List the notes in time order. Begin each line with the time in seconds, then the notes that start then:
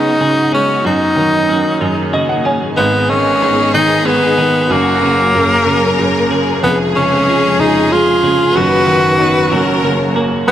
Already playing: C#3 F#3 G#3 B3 C#4 D#4 F#4 G#4
0.21 C#3 G#4
0.53 G#3 C#4
0.83 F#2 F#3 D#4
1.16 D#3 D#4
1.49 F#2 F#4
1.81 F#2 D#3 A#3 G#4
2.13 C#3 F#4 D#5
2.29 F#5
2.45 C#4 G#5
2.75 G#1 G#2 D#3 G#3 B3 D#4 G#4 D#5
3.09 D#3 C#4 D#4
3.41 G#2 B3
3.73 D#3 D#4
4.06 G#2 B3
4.38 D#3 G#4
4.69 F#1 F#2 F#3 A#3 C#4 F#4 G#4
5.02 C#3 C#4
5.34 F#2 A#3 A#4
5.66 C#3 C#4
5.99 F#2 A#3
6.31 C#3 G#4
6.63 F1 F2 F3 G#3 B3 G#4
6.95 C#3 C#4
7.27 F3 G#3
7.59 C#3 C#4 D#4
7.91 G#3 F4
8.23 C#3 G#4
8.55 F#1 F#2 D#3 F#3 B3 D#4 F#4 B4
8.87 D#3 D#4
9.19 B3 D#4 B4
9.50 F#1 F#2 F#3 A#3 C#4 A#4 C#5
9.84 C#3 A#3
10.15 A#3 F#4
10.47 G#1 G#2 B2 F#3 G#3 B3 F#4 B4 A#5